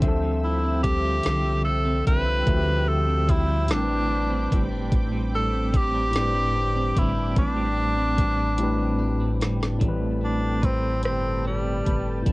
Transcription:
Already playing: D3 G3 C4 F4 E5 G5 E6
0.00 D2 D3 C4 E5, kick, closed hi-hat
0.06 F3 A4
0.22 G3
0.44 E4 F4
0.64 C4
0.83 G3 G4, kick, closed hi-hat
1.04 F4
1.23 C2 D3, snare, closed hi-hat
1.45 G3
1.64 F4 A4
1.85 C4
2.05 C2 G3 B4, kick, closed hi-hat
2.25 F4
2.45 D2 D3 C4 E5, kick, closed hi-hat
2.49 F3 F#4
2.57 G4
2.68 G3
2.88 F4 A4
3.08 C4
3.28 G3 E4, kick, closed hi-hat
3.47 F4
3.66 A2 G3 B5 D6, closed hi-hat
3.71 A1 C4 D4, snare
3.76 A#4
3.83 B4
3.89 G3
4.09 D4
4.30 C4
4.51 G1 G3, kick, closed hi-hat
4.71 D4
4.92 A1 A2, kick, closed hi-hat
5.12 G3
5.33 D4 A4
5.53 C4
5.70 G3 A4, kick, closed hi-hat
5.76 G4
5.94 D4
6.11 A2 G3, closed hi-hat
6.16 G1 C4 D4, snare
6.21 B4
6.34 G3
6.55 D4
6.75 C4
6.95 G1 G3 E4, kick, closed hi-hat
7.17 D4
7.36 A1 A2 D4, kick, closed hi-hat
7.56 G3
7.76 D4
7.97 C4
8.16 G3, kick, closed hi-hat
8.37 D4
8.58 A2 G3 C4, closed hi-hat
8.62 D4 B4
8.79 G3
8.98 D4
9.20 C4
9.41 G1 G3, snare, closed hi-hat
9.60 D4, snare
9.78 A2 G3 A3 A4 G5 A5 B5, kick, closed hi-hat
9.82 A1 C4
9.88 B4
10.21 C4 D4
10.62 C4 B4, kick, closed hi-hat
11.03 G1 C4 G4, cross-stick, closed hi-hat
11.45 G3 C4
11.85 G1 B4, kick, closed hi-hat
12.22 A2 G3, kick
12.27 A1 A3, closed hi-hat

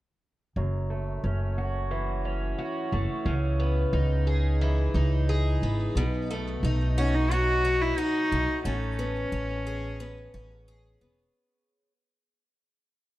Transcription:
0.56 F#1 F#2
0.90 A3
1.24 F#1 C#4
1.58 F#4
1.91 E3
2.25 C#4
2.58 F#4
2.92 F#1 A3
3.25 C#2 C#3
3.59 B3
3.93 C#2 D#4
4.27 G#4
4.61 E3
4.94 C#2 D#4
5.29 G#4
5.62 G#1 B3
5.95 B1 B2
6.30 A3
6.63 B1 D#4
6.98 C#4 F#4
7.15 D#4
7.31 F#3 F#4
7.65 D#4
7.81 E4
7.98 D#4 F#4
8.32 B1 A3
8.64 A1 A3 C#4
8.99 B3
9.32 A1 C#4
9.67 G#4
10.00 B3
10.34 A1 C#4
10.68 G#4
11.01 E1 B3

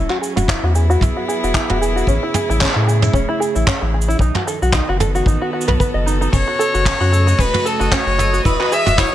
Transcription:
Already playing: F#3 C#4
0.10 F#4, clap
0.21 G#4, cabasa
0.36 E1 E4 F#4, mid tom, cabasa
0.48 E4, kick, clap, cabasa
0.53 B3
0.63 E2 F#4
0.75 G#4, cabasa
0.90 F#4 G#4, cabasa
1.01 B1 E4, kick, mid tom, cabasa
1.16 F#4
1.28 G#4, cabasa
1.43 E1 F#4, cabasa
1.54 E4, kick, clap, cabasa
1.70 E1 F#4, mid tom
1.81 G#4, cabasa
1.96 F#4, cabasa
2.07 A1 C#3 C#4, kick, cabasa
2.23 E4
2.30 A3
2.34 G#4, mid tom, cabasa
2.49 A1 E4, cabasa
2.61 C#4, kick, clap, cabasa
2.63 clap
2.66 clap
2.68 clap
2.73 A2 E4, clap
2.87 G#4, cabasa
3.02 E4, mid tom, cabasa
3.13 E1 C#4, kick, cabasa
3.29 E4
3.40 G#4, cabasa
3.55 A1 E4, cabasa
3.67 C#4, kick, clap, mid tom, cabasa
3.82 A1 E4
3.94 G#4
4.01 cabasa
4.08 E4, cabasa
4.19 B1 D#3 D#4, kick, cabasa
4.35 F#4, clap, mid tom
4.47 A4, cabasa
4.62 B1 F#4, cabasa
4.72 B3 D#4, kick, clap, cabasa
4.89 F#1 F#4
5.00 A4, mid tom, cabasa
5.13 F#4 A4, cabasa
5.26 A1 D#4, kick, cabasa
5.42 F#4
5.53 F#4
5.61 cabasa
5.68 B1 B4, mid tom
5.80 B4, kick, cabasa
5.94 F#1 D#5
6.06 D#4, cabasa
6.21 D#4, cabasa
6.32 F#1 C#3 C#4 C#5 D#5 D#6, kick, open hi-hat, cabasa
6.47 F#4
6.59 A4, cabasa
6.74 F#1 F#4, open hi-hat, cabasa
6.85 C#4, kick, clap, mid tom, open hi-hat, cabasa
6.98 F#2 A3 F#4, open hi-hat
7.12 A4, cabasa
7.27 F#4, open hi-hat, cabasa
7.38 E1 C#4 B4, kick, open hi-hat, cabasa
7.54 F#4, mid tom, open hi-hat
7.65 A4, cabasa
7.80 F#1 F#4, open hi-hat, cabasa
7.91 C#4 C#5, kick, clap, open hi-hat, cabasa
8.06 F#1 F#4, open hi-hat
8.19 A4, mid tom, cabasa
8.33 F#4, cabasa
8.45 E1 E3 E4 B4, kick, open hi-hat, cabasa
8.60 F#4, clap
8.62 clap
8.66 clap
8.68 G#3, clap
8.70 G#4 E5, clap, cabasa
8.86 E1 F#4, mid tom, open hi-hat, cabasa
8.92 B4
8.98 E4 C#5, kick, clap, open hi-hat, cabasa

